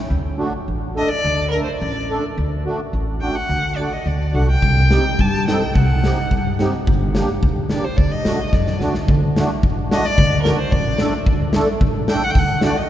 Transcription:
0.10 D2
0.38 A3 D4 F#4
0.68 A1
0.95 A3 D4 A4 D#5
1.08 D5
1.24 D2
1.51 A3 D4 A4 A#4
1.63 C5
1.75 D5
1.81 A1
2.10 A3 D4 A4
2.38 D2
2.66 A3 D4 F#4
2.93 A1
3.21 A3 D4 F#4 G5
3.35 F#5
3.49 D2
3.76 A3 D4 F#4 D5
3.92 D#5
4.06 D2 D5
4.33 C2 A3 D4 F#4 F#5
4.48 G5
4.62 C2, kick
4.90 C4 D#4 G4, snare
5.19 G2 A5, kick
5.34 snare
5.47 C4 D#4 A4 G5, snare
5.73 C2 F#5, kick
6.04 C4 D#4 G4, snare
6.31 G2, kick
6.59 C4 D#4 G4, snare
6.87 G1, kick
7.15 A#3 D4 G4, snare
7.43 D2, kick
7.70 A#3 D4 G4 D5, snare
7.84 C5
7.96 D2 D5, kick
8.12 D#5
8.25 A2 A3 D4 F#4, snare
8.48 D#5
8.52 F#2 D5, kick, snare
8.67 snare
8.80 D2 A3 D4 F#4, snare
8.94 snare
9.08 D2, kick
9.36 A3 D4 F#4, snare
9.63 A1, kick
9.90 A3 D4 F#4 D#5, snare
10.05 D5
10.18 D2, kick
10.43 A3 D4 F#4 A#4, snare
10.59 C5
10.71 A1 D5, kick
10.98 A3 D4 A4, snare
11.26 D2, kick
11.53 A3 D4 A4, snare
11.81 A1, kick
12.08 A3 D4 A4 G5, snare
12.24 F#5
12.30 G5
12.35 D2 F#5, kick
12.61 A3 D4 F#4, snare
12.66 D5
12.77 D#5

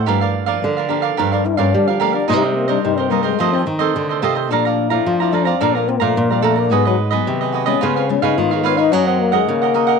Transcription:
0.06 G2 F3 A#3 D4 G4 A#4 D5 F5
0.21 A#4 D5 F5
0.46 F3 A#3 D4 A#4 D5 F5
0.62 D3
0.77 A#4 D5 F5
0.89 F3 A#3 D4 G4 A#4 D5 F5
1.02 A#4 D5 F5
1.17 G2 F3 A#3 D4 G4 A#4 D5 F5
1.32 D4 A#4 D5 F5
1.45 E4, muted cavaquinho stroke
1.57 G2 F3 A#3 C#4 D4 A#4 D5 F5
1.73 D3 G3 D4
1.88 F3 A#4 D5 F5
2.00 F3 A3 A#3 D4 G4 A#4 D5 F5
2.13 D4 A#4 D5 F5
2.28 C3 G3 A#3 D#4 A#4 C5 D#5
2.42 G3 A#4 C5 D#5
2.55 A#3
2.68 G3 A#3 D4 D#4 A#4 C5 D#5
2.84 G2 C3 D#4
2.98 C4 A#4 C5 D#5
3.10 G3 A#3 D#4 A#4 C5 D#5
3.23 G#3 A#4 C5 D#5
3.39 F2 D#3 F3 A3 C4 F4 A4 C5 D#5
3.53 C4 A4 C5 D#5
3.66 D#3, muted cavaquinho stroke
3.79 D#3 A3 C4 A4 C5 D#5
3.95 C3 D3
4.09 A4 C5 D#5
4.22 C3 D#3 A3 C4 F4 A4 C5 D#5
4.35 A4 C5 D#5
4.50 A#2 F3 A3 D4 A4 D5 F5 A#5
4.65 D5 F5 A#5
4.90 F3 A3 D4 E4 D5 F5 A#5
5.06 F2 F3 F4
5.20 E4 D5 F5 A#5
5.32 F3 A3 D4 A4 D5 F5 A#5
5.45 C4 D5 F5 A#5
5.60 A#2 F3 A3 D4 A4 D5 F5 A#5
5.75 A#3 D5 F5 A#5
5.88 C4, muted cavaquinho stroke
6.00 A#2 F3 A3 D4 D5 F5 A#5
6.16 F2 A#2 A#3
6.30 G3 D5 F5 A#5
6.42 F3 A3 D4 A4 D5 F5 A#5
6.56 A#3 D5 F5 A#5
6.71 G#2 F#3 B3 D#4 F#4 G#4 B4 D#5
6.85 F#3 G#4 B4 D#5
7.11 F#3 B3 D#4 G#4 B4 D#5
7.27 C3 D#3
7.41 G#4 B4 D#5
7.52 F#4 G#4 B4 D#5
7.66 G#3 B3 C#4 F4 G#4 B4 D#5
7.81 C#3 B3 F4 B4 C#5 F5
7.96 C4 B4 C#5 F5
8.09 G#3 B3 C#4 F4, muted cavaquinho stroke
8.22 C#3 D#4 B4 C#5 F5
8.38 G#2 D#3 G#3 B3 F4
8.51 G#3 B4 C#5 F5
8.63 B3 F4 B4 C#5 F5
8.77 D#4 B4 C#5 F5
8.92 F#2 D#3 F#3 A#3 C#4 F#4 A#4 D#5 F#5
9.07 C4 A#4 D#5 F#5
9.20 A#3
9.32 D#3 G#3 A#3 C#4 A#4 D#5 F#5
9.47 C#3 A#3
9.62 A#4 D#5 F#5
9.74 D#3 A#3 C#4 F#4 A#4 D#5 F#5
9.87 A#4 D#5 F#5

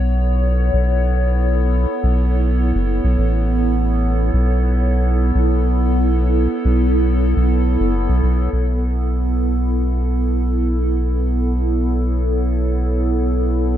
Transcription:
Already playing: B1 B3 E4 A4 C#5
0.73 B1
2.03 B1
2.75 F#1
3.04 B1
3.18 A1
4.33 B1
5.35 B1
6.65 B1
7.37 B1
7.80 F#1
8.09 B1
8.23 B1
8.53 B1
10.97 C#5

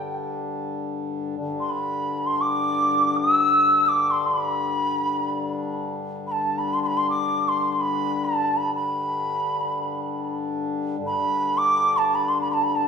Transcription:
Already playing: G2 D3 G5
1.37 G2 D3
1.60 C6
1.70 B5
2.26 C6
2.41 D6
3.17 D#6
3.32 E6
3.85 D6 E6
4.11 C6
4.27 C6
4.39 B5
6.27 B5
6.32 A5
6.58 B5
6.74 C6
6.83 B5 C6
6.97 C6
7.10 D6
7.48 C6
7.72 C6
7.80 B5
8.25 A5
8.57 B5
8.75 B5
10.98 G2 D3
11.06 B5
11.58 D6
11.97 A5
12.15 B5
12.29 C6
12.41 B5
12.51 A5 B5
12.64 B5
12.75 A5

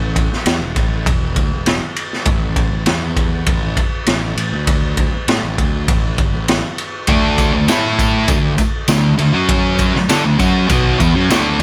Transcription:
Already playing: A1
0.16 kick, ride
0.32 muted picked electric bass stroke, snare
0.46 E2, snare, ride
0.61 E1
0.76 A1, kick, ride
1.06 E1, kick, ride
1.36 D2, kick, ride
1.52 E1
1.66 snare, ride
1.96 ride
2.13 snare
2.25 A1, kick, ride
2.56 kick, ride
2.72 A1
2.86 E2, snare, ride
3.17 kick, ride
3.46 A1, kick, ride
3.77 kick, ride
4.06 A1, snare, ride
4.37 A1, ride
4.53 D2
4.67 kick, ride
4.97 kick, ride
5.13 muted picked electric bass stroke
5.28 A2, snare, ride
5.43 A1
5.58 D2, kick, ride
5.88 A1, kick, ride
6.18 G1, kick, ride
6.34 A1
6.48 snare, ride
6.78 ride
7.07 D2 D3 A3 D4, kick, ride
7.38 kick, ride, tambourine
7.53 D2 D3 A3
7.68 A2 A3 E4 A4, snare, ride, tambourine
7.99 kick, ride, tambourine
8.28 D2 D3 A3, kick, ride, tambourine
8.58 kick, ride, tambourine
8.88 D2 D3 A3, snare, ride, tambourine
9.18 D2 D3 A3, ride, tambourine
9.34 F#2 F#3 C#4 F#4
9.49 kick, ride
9.79 kick, ride, tambourine
9.95 muted picked electric bass stroke, muted distorted electric guitar stroke, snare
10.09 D3 D4 A4, snare, ride, tambourine
10.24 D2 D3 A3
10.39 F#2 F#3 C#4 F#4, kick, ride, tambourine
10.69 B1 B2 F#3 B3, kick, ride, tambourine
11.00 E2 E3 B3, kick, ride, tambourine
11.15 F#2 F#3 C#4
11.30 D2 D3 A3 D4, snare, ride, tambourine
11.59 E2, ride

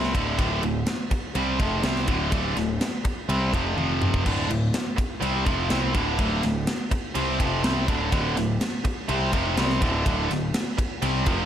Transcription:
Already playing: C2 C3 G3 C4
0.04 snare
0.14 D1 D2 A2 D3, kick, ride
0.38 D1 D2 A2 D3, kick, ride
0.63 D1 D2 A2, ride
0.87 snare, ride
1.11 muted picked electric bass stroke, muted distorted electric guitar stroke, kick, ride
1.35 C2 C3 G3 C4, ride
1.59 F1 F2 C3 F3, kick, ride
1.83 C2 C3 G3 C4, snare, ride
1.96 snare
2.08 D1 D2 A2 D3, kick, ride
2.32 D1 D2 A2 D3, kick, ride
2.57 D1 D2 A2, snare, ride
2.81 snare, ride
3.05 muted distorted electric guitar stroke, muted picked electric bass stroke, kick, ride
3.29 C2 C3 G3 C4, ride
3.53 F1 F2 C3 F3, kick, ride
3.77 F1 F2 C3 F3, high tom
4.02 mid tom
4.14 kick
4.25 D1 D2 A2 D3, kick, crash
4.49 D1 D2 A2, ride
4.74 snare, ride
4.97 muted distorted electric guitar stroke, muted picked electric bass stroke, kick, ride
5.21 C2 C3 G3 C4, ride
5.46 F1 F2 C3 F3, kick, ride
5.70 C2 C3 G3 C4, snare, ride
5.94 D1 D2 A2 D3, kick, ride
6.18 D1 D2 A2 D3, kick, ride
6.43 D1 D2 A2, snare, ride
6.67 snare, ride
6.91 muted picked electric bass stroke, muted distorted electric guitar stroke, kick, ride
7.15 C2 C3 G3 C4, ride
7.40 F1 F2 C3 F3, kick, ride
7.64 C2 C3 G3 C4, snare, ride
7.87 D1 D2 A2 D3, kick, ride
8.12 D1 D2 A2 D3, kick, ride
8.36 D1 D2 A2, snare, ride
8.61 snare, ride
8.85 muted distorted electric guitar stroke, muted picked electric bass stroke, kick, ride
9.09 C2 C3 G3 C4, ride
9.33 F1 F2 C3 F3, kick, ride
9.57 C2 C3 G3 C4, snare, ride
9.70 snare
9.82 D1 D2 A2 D3, kick, ride
10.06 D1 D2 A2 D3, kick, ride
10.30 D1 D2 A2, snare, ride
10.54 snare, ride
10.78 muted distorted electric guitar stroke, muted picked electric bass stroke, kick, ride
11.02 C2 C3 G3 C4, ride
11.26 F1 F2 C3 F3, kick, ride

